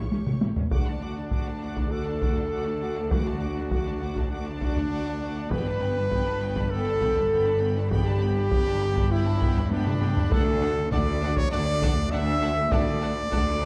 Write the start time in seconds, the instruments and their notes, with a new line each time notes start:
Already playing: french horn section C#4, viola section G4, violin section C#5 C#6
0.11 double bass section A1, cello section A2, viola section C#4, taiko high
0.26 cello section A2, viola section A3, taiko mid
0.41 double bass section A1, cello section A2, viola section E4, taiko high
0.56 cello section A2, viola section C#4, taiko low
0.71 cello section D2, double bass section D2, french horn section D4, trumpet D4, viola section F#4, violin section F#5 D6, taiko
0.86 viola section D4, violin section D5 A5
1.02 viola section F#4, violin section F#5 D6
1.17 viola section D4, violin section D5 A5
1.31 viola section F#4, violin section F#5 D6, taiko
1.46 viola section D4, violin section D5 A5
1.61 viola section F#4, violin section F#5 D6
1.76 viola section D4, violin section D5 A5, taiko
1.90 viola section F#4, french horn section A4, trumpet A4, violin section F#5 D6
2.05 viola section D4, violin section D5 A5
2.20 viola section F#4, violin section F#5 D6, taiko
2.37 viola section D4, violin section D5 A5, taiko low
2.52 viola section F#4, violin section F#5 D6
2.66 viola section D4, violin section D5 A5
2.81 viola section F#4, violin section F#5 D6
2.96 viola section D4, violin section D5 A5
3.10 french horn section F#4, trumpet F#4, viola section F#4, violin section F#5 D6, taiko
3.26 viola section D4, violin section D5 A5
3.41 viola section F#4, violin section F#5 D6
3.56 viola section D4, violin section D5 A5
3.71 viola section F#4, violin section F#5 D6, taiko
3.86 viola section D4, violin section D5 A5
4.02 viola section F#4, violin section F#5 D6
4.16 viola section D4, violin section D5 A5, taiko
4.31 french horn section D4, trumpet D4, viola section F#4, violin section F#5 D6
4.46 viola section D4, violin section D5 A5
4.61 viola section F#4, violin section F#5 D6, taiko
4.76 viola section D4, violin section D5 A5, taiko low
4.91 viola section F#4, violin section F#5 D6
5.07 viola section D4, violin section D5 A5
5.22 viola section F#4, violin section F#5 D6
5.35 viola section D4, violin section D5 A5
5.51 double bass section G1, cello section G2, viola section B3, french horn section B4, trumpet B4, violin section G5 B5, taiko
5.66 viola section D4, violin section A5 B5
5.81 viola section B3, violin section G5 B5
5.96 viola section D4, violin section A5 B5
6.11 viola section B3, violin section G5 B5, taiko
6.27 viola section D4, violin section A5 B5
6.41 viola section B3, violin section G5 B5
6.56 viola section D4, violin section A5 B5, taiko
6.70 viola section B3, trumpet A4, french horn section A4, violin section G5 B5
6.87 viola section D4, violin section A5 B5
7.01 viola section B3, violin section G5 B5, taiko
7.15 viola section D4, violin section A5 B5, taiko low
7.30 viola section B3, violin section G5 B5
7.45 viola section D4, violin section A5 B5
7.60 viola section B3, violin section G5 B5
7.76 viola section D4, violin section A5 B5
7.90 viola section B3, trumpet G4, french horn section G4, violin section G5 B5, taiko
8.05 viola section D4, violin section A5 B5
8.21 viola section B3, violin section G5 B5
8.36 viola section D4, violin section A5 B5
8.51 viola section B3, violin section G5 B5, taiko
8.66 viola section D4, violin section A5 B5
8.80 viola section B3, violin section G5 B5
8.95 viola section D4, violin section A5 B5, taiko
9.09 viola section B3, french horn section E4, trumpet E4, violin section G5 B5
9.25 viola section D4, violin section A5 B5
9.40 viola section B3, violin section G5 B5, taiko
9.56 viola section D4, violin section A5 B5, taiko low
9.70 viola section B3, french horn section D4, trumpet D4, violin section G5 B5, taiko high
9.86 viola section D4, violin section A5 B5, taiko mid
10.01 viola section B3, violin section G5 B5, taiko mid
10.16 viola section D4, violin section A5 B5, taiko low
10.30 cello section D2, double bass section D2, viola section D4, french horn section A4, trumpet A4, violin section F#5 A5, taiko
10.62 viola section D4, violin section F#5 A5
10.91 cello section D2, double bass section D2, viola section D4, french horn section D5, trumpet D5, violin section F#5 A5, taiko
11.22 viola section D4, violin section F#5 A5
11.37 trumpet C#5, french horn section C#5, taiko
11.51 double bass section D2, cello section D2, viola section D4, french horn section D5, trumpet D5, violin section F#5 A5
11.82 viola section D4, violin section F#5 A5, taiko
11.97 taiko low
12.10 cello section D2, double bass section D2, viola section D4, french horn section E5, trumpet E5, violin section F#5 A5
12.41 viola section D4, violin section F#5 A5
12.71 double bass section D2, cello section D2, viola section D4, french horn section D5, trumpet D5, violin section F#5 A5, taiko
13.01 viola section D4, violin section F#5 A5
13.31 cello section D2, double bass section D2, viola section D4, violin section F#5 A5, taiko
13.61 viola section D4, violin section F#5 A5